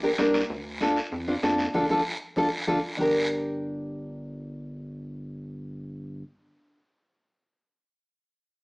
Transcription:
Already playing: A#1
0.03 D4 G4 A#4, high conga
0.18 C2 D4 G4 A#4, high conga, high timbale, short guiro
0.34 high conga, high timbale, short guiro
0.50 D2, high conga, long guiro
0.81 D4 F4 A4, high conga, short guiro
0.96 short guiro
1.12 F2, long guiro
1.28 D4 F4 C5, high conga
1.43 F2 D4 F4 A4, high conga, short guiro
1.58 high conga, short guiro
1.74 D2 D4 F4 A4, low conga, long guiro
1.89 D2 D4 F4 A4, low conga, long guiro
2.36 D2 D4 F4 A4, low conga, long guiro
2.67 D2 D4 F4 A4, low conga, long guiro
2.97 G1 D4 G4, low conga, long guiro
3.01 A#4

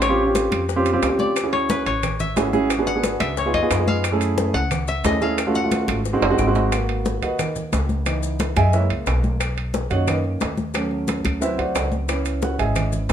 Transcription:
Already playing: A1 A4
0.02 C#5, high bongo, high conga, high timbale, claves, maracas
0.09 C4 C#4 F4 G4
0.18 high conga
0.26 C4 C#4 F4 G4
0.35 high bongo, high conga, high timbale, low timbale, maracas
0.51 F2, high bongo, high conga, high timbale, claves, maracas
0.69 high bongo, high conga, maracas
0.76 C4 C#4 F4 G4
0.85 high conga, high timbale, maracas
0.93 C4 C#4 F4 G4
1.02 D2, high bongo, low bongo, high conga, high timbale, low timbale, claves, maracas
1.09 C4 C#4 F4 G4
1.19 D5, high bongo, high conga, maracas
1.36 high bongo, high conga, high timbale, claves, maracas
1.43 C#4 E4 F#4 G#4
1.53 C#5, high conga, high timbale
1.69 B4, high bongo, high conga, low timbale, maracas
1.86 A1 C#5, high bongo, high conga, high timbale, maracas
2.03 high bongo, high conga, low conga, high timbale, claves, maracas
2.20 E5, high bongo, high conga, low conga, maracas
2.36 G#1 C#4 E4 F#4 G#4, high bongo, low bongo, high conga, high timbale, low timbale, maracas
2.53 C#4 E4 F#4 G#4, high bongo, high conga, maracas
2.70 high bongo, high conga, high timbale, claves, maracas
2.78 B3 D4 F#4 G#4
2.87 F#5, high conga, maracas
2.95 B3 D4 F#4 G#4
3.04 high bongo, high conga, high timbale, low timbale, maracas
3.20 C#2 E5, high bongo, high conga, high timbale, claves, maracas
3.37 C#5, high bongo, high conga, maracas
3.46 B3 D#4 F4 G#4
3.54 F2 D#5, high conga, high timbale
3.62 B3 D#4 F4 G#4
3.70 F#2, high bongo, low bongo, high conga, high timbale, low timbale, claves, maracas
3.78 B3 D#4 F4 G#4
3.88 F5, high bongo, high conga, maracas
4.04 high bongo, high conga, high timbale, claves, maracas
4.12 A3 C#4 E4 G#4
4.21 high conga, high timbale, maracas
4.38 high bongo, high conga, low timbale, maracas
4.54 C#2 F#5, high bongo, high conga, high timbale, maracas
4.71 high bongo, high conga, low conga, high timbale, claves, maracas
4.88 E5, high bongo, high conga, maracas
5.04 D#2 A3 C#4 E4 G#4 D#5, high bongo, low bongo, high conga, high timbale, low timbale, maracas
5.21 A3 C#4 E4 G#4 F5, high bongo, high conga, maracas
5.38 high bongo, high conga, high timbale, claves, maracas
5.47 A3 C#4 F4 F#4
5.55 F#5, high conga, maracas
5.64 A3 C#4 F4 F#4
5.71 high bongo, high conga, high timbale, low timbale, maracas
5.88 G#1, high bongo, high conga, high timbale, claves, maracas
6.05 high bongo, high conga, maracas
6.13 G#3 C4 D#4 F#4
6.21 F#1, high bongo, high conga, high timbale
6.30 G#3 C4 D#4 F#4
6.38 G#1, low bongo, high conga, low timbale, claves, maracas
6.47 G#3 C4 D#4 F#4
6.55 low bongo, high conga, low timbale, maracas
6.72 A#3 B3 F#4, high bongo, high conga, high timbale, claves, maracas
6.89 high conga, high timbale
7.05 high bongo, high conga, low timbale, maracas
7.22 D#2 F#4 B4 D#5 F#5, high bongo, high conga, high timbale, maracas
7.39 D#4 A#4 B4 D#5, high bongo, high conga, low conga, high timbale, claves, maracas
7.56 high bongo, high conga, low conga, maracas
7.73 C#2, high bongo, low bongo, high conga, high timbale, low timbale, maracas
7.89 high bongo, high conga, maracas
8.06 E3 B3 D#4, high bongo, high conga, high timbale, claves, maracas
8.23 high conga, maracas
8.39 high bongo, high conga, high timbale, low timbale, maracas
8.56 F#2 G#4 D#5 E5 G#5, high bongo, high conga, high timbale, claves, maracas
8.73 G#3 A#3 E4 A#4 C#5 E5, high bongo, high conga, maracas
8.90 C#2, high conga, high timbale
9.06 B1, high bongo, low bongo, high conga, high timbale, low timbale, claves, maracas
9.23 high bongo, high conga, maracas
9.40 high bongo, high conga, high timbale, claves, maracas
9.57 high conga, high timbale
9.74 high bongo, high conga, low timbale, maracas
9.90 F#2 D#3 A#3 C#4 F#4 C#5 D#5 F#5, high bongo, high conga, high timbale, maracas
10.07 D#4 A#4 B4 D#5, high bongo, high conga, low conga, high timbale, claves, maracas
10.24 high bongo, high conga
10.41 D#2, high bongo, low bongo, high conga, high timbale, low timbale, maracas
10.58 high bongo, high conga, maracas
10.74 F#3 A3 C#4, high bongo, high conga, high timbale, claves, maracas
10.91 high conga
11.08 high bongo, high conga, high timbale, low timbale, maracas
11.25 D2, high bongo, high conga, high timbale, claves, maracas
11.40 F#3 C4 E4 B4 C5 E5, high bongo, high conga, maracas
11.58 D2 F#4 C5 D5 F#5, high conga, high timbale
11.75 C#2, high bongo, low bongo, high conga, high timbale, low timbale, claves, maracas
11.92 high bongo, high conga, maracas
12.08 B3 C#4 E4, high bongo, high conga, high timbale, claves, maracas
12.25 high conga, high timbale, maracas
12.42 F#4 F#5, high bongo, high conga, low timbale, maracas
12.59 G#1 G#4 D#5 E5 G#5, high bongo, high conga, high timbale, maracas
12.75 high bongo, high conga, low conga, high timbale, claves, maracas
12.92 high bongo, high conga, low conga, maracas
13.09 D#2, high bongo, low bongo, high conga, high timbale, low timbale, maracas

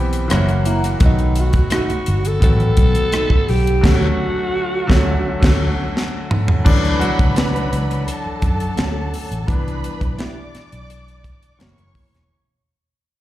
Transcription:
Already playing: B1 E3 G3 B3 C4 G4
0.13 closed hi-hat
0.28 F#1 E3 F#3 A#3 C#4 E4 F#4, cross-stick, closed hi-hat
0.47 F#5, closed hi-hat
0.65 A#3 E4 F#4 A#5, closed hi-hat
0.82 F#5, cross-stick, closed hi-hat
0.99 B1 D#3 F#3 A3 B3 F#4, kick, closed hi-hat
1.05 D#4
1.19 closed hi-hat
1.36 closed hi-hat
1.40 F#4
1.53 kick, closed hi-hat
1.70 A3 D#4 F#4, cross-stick, closed hi-hat
1.90 muted fingered electric bass stroke, closed hi-hat
2.06 G1, closed hi-hat
2.25 A4, closed hi-hat
2.40 A1 D#3 F#3 A3 B3 F#4 A4, kick, closed hi-hat
2.60 closed hi-hat
2.77 B1, kick, closed hi-hat
2.95 closed hi-hat
3.12 A3 D#4 F#4, cross-stick, closed hi-hat
3.30 kick
3.48 B1 G4, open hi-hat
3.67 closed hi-hat
3.81 D2 D3 F#3 A3 C#4 F#4, kick, crash
3.85 F#4, snare
4.87 D2 D3 F#3 A3 C#4 F#4, kick, snare
4.91 F#4
5.40 D2 D3 F#3 A3 C#4 F#4, kick, crash
5.44 snare
5.97 snare
6.31 mid tom
6.48 floor tom
6.65 D2 D3 E3 F#3 C#4 D4 B4 B5, kick, crash
6.85 closed hi-hat
6.99 F#3 F#4, closed hi-hat
7.19 C#2, kick, closed hi-hat
7.35 A3 C#4 D4 F#4, snare, closed hi-hat
7.56 closed hi-hat
7.73 C#2, closed hi-hat
7.91 closed hi-hat
8.06 A4 A5, closed hi-hat
8.26 muted fingered electric bass stroke
8.42 F#2, kick, closed hi-hat
8.60 closed hi-hat
8.77 D2 A3 C#4 F#4, snare, closed hi-hat
9.14 open hi-hat
9.31 A1, closed hi-hat
9.47 C2 E3 B3 D4 B4 B5, kick, closed hi-hat
9.68 closed hi-hat
9.84 closed hi-hat
10.01 B1, kick, closed hi-hat
10.18 B3 E4 G4 D5 D6, snare, closed hi-hat
10.55 muted fingered electric bass stroke, snare, closed hi-hat
10.72 B1, closed hi-hat
10.90 closed hi-hat
11.08 closed hi-hat
11.24 kick, closed hi-hat
11.43 closed hi-hat
11.59 F#1 E3 A#3 C#4 E4 F#4 C#5 C#6, snare, closed hi-hat
11.78 F#1, closed hi-hat
11.95 kick, open hi-hat
12.14 E1, snare, closed hi-hat

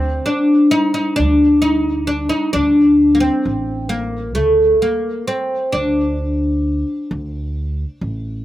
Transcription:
Already playing: D2 C4
0.26 D4
0.71 D#4
0.94 D#4
1.16 D2 D4
1.62 D#4
2.07 D4
2.29 D#4
2.53 D2 D4
3.15 A#3
3.20 C4
3.45 A1
3.89 A#3
4.35 D2 A3
4.82 A#3
5.27 C4
5.72 D2 D4
7.11 D2
8.01 A1

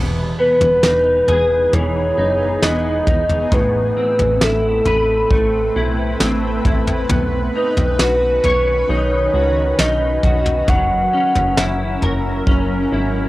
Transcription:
Already playing: E1 E2 E3 B3 D#4 E4 G#4
0.39 B3 B4
0.61 E1, floor tom
0.83 E1 D#4, snare
1.28 E1 G#4, floor tom
1.73 E1 E3 C#5, floor tom
2.18 F#1 D#4
2.62 E1 B3 D#5, snare
3.07 E1 D#4, kick, floor tom
3.29 floor tom
3.52 A1 A2 A3 C4 B4, kick, floor tom
3.97 C4
4.19 A1, floor tom
4.41 A1 E4 A4, snare
4.85 A1 B4, floor tom
5.30 A1 A3, kick
5.76 B1 E4
6.20 A1 C4, snare
6.65 A1 E4, kick, floor tom
6.87 floor tom
7.09 B1 D#3 B3 C#4, kick, floor tom
7.55 D#4 B4
7.77 B1, floor tom
7.99 B1 F#4, snare
8.44 B1 C#5, floor tom
8.89 B1 D#4 C#5
9.34 C#2 F#4
9.79 B1 D#4 D#5, snare
10.23 B1 F#4, kick, floor tom
10.46 floor tom
10.68 F#1 F#3 C#4 E4 A#4 F#5, kick, floor tom
11.13 C#4
11.35 F#1, floor tom
11.57 F#1 E4, snare
12.02 F#1 A#4, floor tom
12.47 F#1 C#4 D#5, kick
12.92 G#1 E4

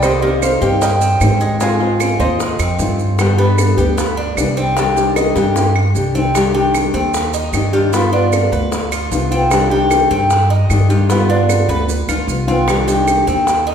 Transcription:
Already playing: C2 G3
0.02 C3 D#3 A#3 C4 G4 C5 D#5, high bongo, claves, maracas
0.22 D#3 A#3 C4 G4, high bongo
0.42 C5 F5, high bongo, claves, maracas
0.61 G2 D#3 A#3 C4 G4, high bongo, maracas
0.82 A#3 D#5 G5, muted nylon-string guitar stroke, high bongo, maracas
1.01 C4, maracas
1.20 G#2 D#3 A#3 C4 G4, high bongo, low bongo, claves, maracas
1.41 G#3, high bongo, maracas
1.60 G#3 C4 F4 F5 G#5, high bongo, maracas
1.80 C4 F4, high bongo
2.00 C4, high bongo, claves, maracas
2.19 D#2 C4 D#4 F4 C5 D#5, high bongo, maracas
2.40 muted nylon-string guitar stroke, high bongo, maracas
2.59 F2 C4, claves, maracas
2.79 G2 C4 F4, high bongo, low bongo, maracas
2.99 high bongo, maracas
3.18 D3 G3 B3 D4 G4, high bongo, claves, maracas
3.38 G3 B3 D4 G4, high bongo
3.58 high bongo, claves, maracas
3.77 D2 G3 B3 D4 G4, high bongo, maracas
3.97 B3, muted nylon-string guitar stroke, high bongo, maracas
4.17 D4
4.37 C2 G3 B3 D4 G4, high bongo, low bongo, claves, maracas
4.57 C4, high bongo, maracas
4.76 C3 D#3 G3 C4 D4 G4, high bongo, maracas
4.96 D#3 G3 D4 G4, high bongo, maracas
5.16 D#4, high bongo, claves, maracas
5.35 G2 D#3 G3 D4 G4, high bongo, maracas
5.56 muted nylon-string guitar stroke, high bongo, maracas
5.76 claves
5.95 C2 D#3 G3 D4 G4, maracas
6.15 C4, low bongo, maracas
6.34 C3 D#3 G3 D4 G4, high bongo, claves, maracas
6.54 D#3 G3 D4 G4, high bongo
6.75 high bongo, claves, maracas
6.94 D#2 C4, high bongo, maracas
7.14 muted nylon-string guitar stroke, high bongo, maracas
7.34 D#4, maracas
7.52 G2 D#3 G3 D4 G4, high bongo, low bongo, claves, maracas
7.73 D#3 G3 D4 F4 G4, high bongo, maracas
7.93 G3 B3 F4, high bongo, maracas
8.12 B3 D4 F4, high bongo
8.32 high bongo, claves, maracas
8.52 D2 B4, high bongo, maracas
8.72 muted nylon-string guitar stroke, high bongo, maracas
8.92 F4, claves, maracas
9.11 C2 G3 B3 F4, high bongo, low bongo, maracas
9.31 B3 C4 F4, high bongo, maracas
9.51 C3 D#3 G3 D4 G4, high bongo, claves, maracas
9.70 D#3 G3 D4 G4, high bongo
9.91 high bongo, claves, maracas
10.11 G2 C4, high bongo, maracas
10.30 muted nylon-string guitar stroke, high bongo, maracas
10.50 D#4
10.70 G2 D#3 G3 D4 G4, high bongo, low bongo, claves, maracas
10.89 D#3 G3 D4 F4 G4, high bongo, maracas
11.09 G3 B3 F4, high bongo, maracas
11.29 B3 D4 F4, high bongo
11.49 high bongo, claves, maracas
11.68 D2 B4, high bongo, maracas
11.89 muted nylon-string guitar stroke, maracas
12.08 D2 F4, low bongo, claves, maracas
12.28 C2 G3 B3 F4, maracas
12.48 B3 C4 F4, low bongo, maracas
12.67 C3 D#3 G3 D4 G4, high bongo, claves, maracas
12.87 D#3 G3 D4 G4, high bongo, maracas
13.07 high bongo, claves, maracas
13.27 D#2 C4, high bongo, maracas
13.47 muted nylon-string guitar stroke, high bongo, maracas
13.67 D#4

